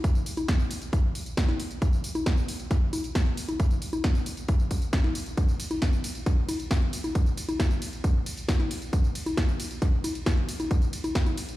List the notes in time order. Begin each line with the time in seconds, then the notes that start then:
0.04 kick, closed hi-hat, tambourine
0.15 tambourine
0.26 open hi-hat, tambourine
0.37 closed hi-hat, tambourine, high conga
0.48 kick, snare, closed hi-hat, tambourine
0.60 tambourine
0.71 open hi-hat, tambourine
0.82 closed hi-hat, tambourine
0.93 kick, closed hi-hat, tambourine
1.15 open hi-hat, tambourine
1.26 closed hi-hat, tambourine
1.37 kick, snare, closed hi-hat, tambourine
1.48 snare, closed hi-hat, high conga
1.60 open hi-hat, tambourine
1.71 closed hi-hat, tambourine
1.82 kick, closed hi-hat, tambourine
1.93 tambourine
2.04 open hi-hat, tambourine
2.15 closed hi-hat, tambourine, high conga
2.26 kick, snare, closed hi-hat, tambourine
2.37 tambourine
2.48 open hi-hat, tambourine
2.60 closed hi-hat, tambourine
2.71 kick, snare, closed hi-hat, tambourine
2.93 open hi-hat, tambourine, high conga
3.04 closed hi-hat, tambourine
3.15 kick, snare, closed hi-hat, tambourine
3.26 closed hi-hat
3.37 open hi-hat, tambourine
3.49 closed hi-hat, tambourine, high conga
3.60 kick, closed hi-hat, tambourine
3.71 closed hi-hat, tambourine
3.82 open hi-hat, tambourine
3.93 closed hi-hat, tambourine, high conga
4.04 kick, snare, closed hi-hat, tambourine
4.15 closed hi-hat, tambourine
4.26 open hi-hat, tambourine
4.37 closed hi-hat, tambourine
4.48 kick, closed hi-hat, tambourine
4.60 tambourine
4.71 kick, open hi-hat, tambourine
4.82 closed hi-hat, tambourine
4.93 kick, snare, closed hi-hat, tambourine
5.04 snare, closed hi-hat, high conga
5.15 open hi-hat, tambourine
5.26 closed hi-hat, tambourine
5.37 kick, closed hi-hat, ride, tambourine
5.49 tambourine
5.60 open hi-hat, ride, tambourine
5.71 closed hi-hat, tambourine, high conga
5.82 kick, snare, closed hi-hat, ride, tambourine
5.93 tambourine
6.04 open hi-hat, ride, tambourine
6.15 closed hi-hat, tambourine
6.26 kick, snare, closed hi-hat, ride, tambourine
6.49 open hi-hat, ride, tambourine, high conga
6.60 closed hi-hat, tambourine
6.71 kick, snare, closed hi-hat, ride, tambourine
6.82 closed hi-hat
6.93 open hi-hat, ride, tambourine
7.04 closed hi-hat, tambourine, high conga
7.15 kick, closed hi-hat, ride, tambourine
7.26 tambourine
7.37 open hi-hat, ride, tambourine
7.49 closed hi-hat, tambourine, high conga
7.60 kick, snare, closed hi-hat, ride, tambourine
7.71 tambourine
7.82 open hi-hat, ride, tambourine
7.93 closed hi-hat, tambourine
8.04 kick, closed hi-hat, ride, tambourine
8.26 open hi-hat, ride, tambourine
8.37 closed hi-hat, tambourine
8.49 kick, snare, closed hi-hat, ride, tambourine
8.60 snare, closed hi-hat, high conga
8.71 open hi-hat, ride, tambourine
8.82 closed hi-hat, tambourine
8.93 kick, closed hi-hat, ride, tambourine
9.04 tambourine
9.15 open hi-hat, ride, tambourine
9.26 closed hi-hat, tambourine, high conga
9.37 kick, snare, closed hi-hat, ride, tambourine
9.49 tambourine
9.60 open hi-hat, ride, tambourine
9.71 closed hi-hat, tambourine
9.82 kick, snare, closed hi-hat, ride, tambourine
10.04 open hi-hat, ride, tambourine, high conga
10.15 closed hi-hat, tambourine
10.26 kick, snare, closed hi-hat, ride, tambourine
10.37 closed hi-hat
10.49 open hi-hat, ride, tambourine
10.60 closed hi-hat, tambourine, high conga
10.71 kick, closed hi-hat, ride, tambourine
10.82 closed hi-hat, tambourine
10.93 open hi-hat, ride, tambourine
11.04 closed hi-hat, tambourine, high conga
11.15 kick, snare, closed hi-hat, ride, tambourine
11.26 closed hi-hat, tambourine, high conga
11.38 open hi-hat, ride, tambourine
11.49 closed hi-hat, tambourine